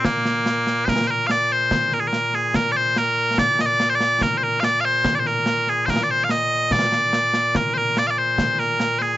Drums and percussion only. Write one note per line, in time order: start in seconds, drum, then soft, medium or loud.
0.05 concert bass drum soft
0.05 snare loud
0.25 snare medium
0.46 snare medium
0.67 snare medium
0.88 concert bass drum medium
0.88 snare loud
1.30 snare medium
1.71 concert bass drum medium
1.71 snare medium
1.92 snare soft
2.13 snare medium
2.34 snare soft
2.54 concert bass drum soft
2.54 snare medium
2.96 snare medium
3.38 concert bass drum medium
3.38 snare medium
3.59 snare medium
3.80 snare medium
4.01 snare medium
4.21 concert bass drum medium
4.21 snare medium
4.63 snare medium
5.05 concert bass drum medium
5.05 snare loud
5.26 snare soft
5.46 snare medium
5.67 snare soft
5.88 concert bass drum soft
5.88 snare medium
6.29 snare medium
6.71 concert bass drum medium
6.71 snare medium
6.92 snare medium
7.13 snare medium
7.34 snare medium
7.55 concert bass drum medium
7.55 snare medium
7.97 snare medium
8.38 concert bass drum medium
8.38 snare medium
8.59 snare soft
8.80 snare medium
9.01 snare soft